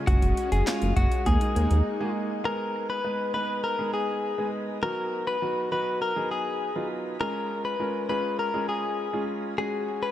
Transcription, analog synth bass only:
0, 0, Header, 1, 2, 480
1, 0, Start_track
1, 0, Tempo, 594059
1, 61, Time_signature, 4, 2, 24, 8
1, 8173, End_track
2, 0, Start_track
2, 0, Title_t, "Analog synth bass"
2, 0, Program_c, 0, 38
2, 61, Note_on_c, 0, 30, 107
2, 151, Note_off_c, 0, 30, 0
2, 180, Note_on_c, 0, 30, 99
2, 271, Note_off_c, 0, 30, 0
2, 421, Note_on_c, 0, 30, 107
2, 511, Note_off_c, 0, 30, 0
2, 662, Note_on_c, 0, 30, 104
2, 752, Note_off_c, 0, 30, 0
2, 780, Note_on_c, 0, 30, 98
2, 871, Note_off_c, 0, 30, 0
2, 1022, Note_on_c, 0, 39, 100
2, 1112, Note_off_c, 0, 39, 0
2, 1261, Note_on_c, 0, 39, 107
2, 1352, Note_off_c, 0, 39, 0
2, 1381, Note_on_c, 0, 39, 97
2, 1472, Note_off_c, 0, 39, 0
2, 8173, End_track
0, 0, End_of_file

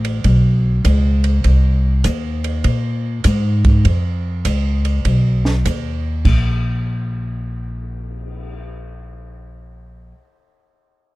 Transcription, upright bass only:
0, 0, Header, 1, 2, 480
1, 0, Start_track
1, 0, Tempo, 600300
1, 1156, Time_signature, 4, 2, 24, 8
1, 8918, End_track
2, 0, Start_track
2, 0, Title_t, "Upright bass"
2, 0, Program_c, 0, 32
2, 0, Note_on_c, 0, 33, 76
2, 182, Note_off_c, 0, 33, 0
2, 195, Note_on_c, 0, 35, 70
2, 661, Note_off_c, 0, 35, 0
2, 675, Note_on_c, 0, 37, 85
2, 1141, Note_off_c, 0, 37, 0
2, 1156, Note_on_c, 0, 36, 70
2, 1621, Note_off_c, 0, 36, 0
2, 1637, Note_on_c, 0, 39, 76
2, 2102, Note_off_c, 0, 39, 0
2, 2113, Note_on_c, 0, 46, 65
2, 2580, Note_off_c, 0, 46, 0
2, 2596, Note_on_c, 0, 44, 79
2, 3061, Note_off_c, 0, 44, 0
2, 3076, Note_on_c, 0, 41, 71
2, 3541, Note_off_c, 0, 41, 0
2, 3559, Note_on_c, 0, 37, 74
2, 4023, Note_off_c, 0, 37, 0
2, 4038, Note_on_c, 0, 35, 70
2, 4502, Note_off_c, 0, 35, 0
2, 4518, Note_on_c, 0, 39, 75
2, 4982, Note_off_c, 0, 39, 0
2, 4996, Note_on_c, 0, 34, 70
2, 8083, Note_off_c, 0, 34, 0
2, 8918, End_track
0, 0, End_of_file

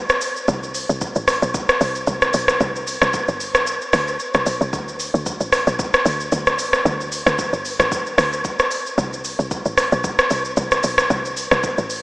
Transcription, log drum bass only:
0, 0, Header, 1, 2, 480
1, 0, Start_track
1, 0, Tempo, 530973
1, 436, Time_signature, 4, 2, 24, 8
1, 10866, End_track
2, 0, Start_track
2, 0, Title_t, "Log drum bass"
2, 0, Program_c, 0, 39
2, 436, Note_on_c, 0, 36, 114
2, 776, Note_off_c, 0, 36, 0
2, 808, Note_on_c, 0, 36, 90
2, 1028, Note_off_c, 0, 36, 0
2, 1047, Note_on_c, 0, 33, 99
2, 1267, Note_off_c, 0, 33, 0
2, 1287, Note_on_c, 0, 35, 92
2, 1507, Note_off_c, 0, 35, 0
2, 1635, Note_on_c, 0, 36, 100
2, 1855, Note_off_c, 0, 36, 0
2, 1874, Note_on_c, 0, 36, 95
2, 2094, Note_off_c, 0, 36, 0
2, 2116, Note_on_c, 0, 35, 94
2, 2336, Note_off_c, 0, 35, 0
2, 2356, Note_on_c, 0, 36, 109
2, 2696, Note_off_c, 0, 36, 0
2, 2729, Note_on_c, 0, 36, 84
2, 2948, Note_off_c, 0, 36, 0
2, 2969, Note_on_c, 0, 31, 91
2, 3209, Note_on_c, 0, 35, 99
2, 3223, Note_off_c, 0, 31, 0
2, 3428, Note_off_c, 0, 35, 0
2, 3556, Note_on_c, 0, 38, 94
2, 3775, Note_off_c, 0, 38, 0
2, 3928, Note_on_c, 0, 36, 90
2, 4027, Note_off_c, 0, 36, 0
2, 4036, Note_on_c, 0, 35, 85
2, 4157, Note_off_c, 0, 35, 0
2, 4167, Note_on_c, 0, 36, 95
2, 4276, Note_on_c, 0, 38, 114
2, 4290, Note_off_c, 0, 36, 0
2, 4616, Note_off_c, 0, 38, 0
2, 4648, Note_on_c, 0, 38, 85
2, 4867, Note_off_c, 0, 38, 0
2, 4886, Note_on_c, 0, 33, 82
2, 5107, Note_off_c, 0, 33, 0
2, 5127, Note_on_c, 0, 35, 101
2, 5347, Note_off_c, 0, 35, 0
2, 5474, Note_on_c, 0, 38, 102
2, 5695, Note_off_c, 0, 38, 0
2, 5716, Note_on_c, 0, 38, 101
2, 5954, Note_on_c, 0, 33, 97
2, 5968, Note_off_c, 0, 38, 0
2, 6175, Note_off_c, 0, 33, 0
2, 6196, Note_on_c, 0, 38, 115
2, 6537, Note_off_c, 0, 38, 0
2, 6567, Note_on_c, 0, 38, 99
2, 6787, Note_off_c, 0, 38, 0
2, 6807, Note_on_c, 0, 31, 93
2, 7027, Note_off_c, 0, 31, 0
2, 7047, Note_on_c, 0, 33, 88
2, 7267, Note_off_c, 0, 33, 0
2, 7394, Note_on_c, 0, 38, 98
2, 7614, Note_off_c, 0, 38, 0
2, 8117, Note_on_c, 0, 36, 112
2, 8457, Note_off_c, 0, 36, 0
2, 8489, Note_on_c, 0, 36, 82
2, 8708, Note_off_c, 0, 36, 0
2, 8729, Note_on_c, 0, 33, 92
2, 8948, Note_off_c, 0, 33, 0
2, 8971, Note_on_c, 0, 35, 105
2, 9189, Note_off_c, 0, 35, 0
2, 9317, Note_on_c, 0, 36, 90
2, 9536, Note_off_c, 0, 36, 0
2, 9556, Note_on_c, 0, 36, 101
2, 9776, Note_off_c, 0, 36, 0
2, 9798, Note_on_c, 0, 35, 85
2, 10017, Note_off_c, 0, 35, 0
2, 10037, Note_on_c, 0, 36, 107
2, 10377, Note_off_c, 0, 36, 0
2, 10410, Note_on_c, 0, 36, 93
2, 10629, Note_off_c, 0, 36, 0
2, 10651, Note_on_c, 0, 33, 95
2, 10866, Note_off_c, 0, 33, 0
2, 10866, End_track
0, 0, End_of_file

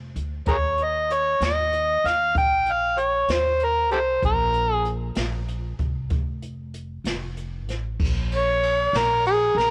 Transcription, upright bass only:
0, 0, Header, 1, 2, 480
1, 0, Start_track
1, 0, Tempo, 626959
1, 355, Time_signature, 12, 3, 24, 8
1, 7430, End_track
2, 0, Start_track
2, 0, Title_t, "Upright bass"
2, 0, Program_c, 0, 32
2, 0, Note_on_c, 0, 29, 75
2, 121, Note_on_c, 0, 38, 72
2, 133, Note_off_c, 0, 29, 0
2, 339, Note_off_c, 0, 38, 0
2, 362, Note_on_c, 0, 39, 80
2, 1047, Note_off_c, 0, 39, 0
2, 1077, Note_on_c, 0, 39, 85
2, 1524, Note_off_c, 0, 39, 0
2, 1564, Note_on_c, 0, 39, 76
2, 1780, Note_off_c, 0, 39, 0
2, 1798, Note_on_c, 0, 34, 85
2, 2485, Note_off_c, 0, 34, 0
2, 2514, Note_on_c, 0, 39, 72
2, 2996, Note_off_c, 0, 39, 0
2, 2996, Note_on_c, 0, 36, 70
2, 3216, Note_off_c, 0, 36, 0
2, 3236, Note_on_c, 0, 34, 86
2, 3924, Note_off_c, 0, 34, 0
2, 3952, Note_on_c, 0, 34, 81
2, 4403, Note_off_c, 0, 34, 0
2, 4433, Note_on_c, 0, 36, 74
2, 4654, Note_off_c, 0, 36, 0
2, 4674, Note_on_c, 0, 29, 82
2, 5363, Note_off_c, 0, 29, 0
2, 5393, Note_on_c, 0, 29, 68
2, 5878, Note_off_c, 0, 29, 0
2, 5878, Note_on_c, 0, 33, 68
2, 6097, Note_off_c, 0, 33, 0
2, 6122, Note_on_c, 0, 34, 87
2, 6807, Note_off_c, 0, 34, 0
2, 6838, Note_on_c, 0, 34, 82
2, 7286, Note_off_c, 0, 34, 0
2, 7309, Note_on_c, 0, 34, 83
2, 7430, Note_off_c, 0, 34, 0
2, 7430, End_track
0, 0, End_of_file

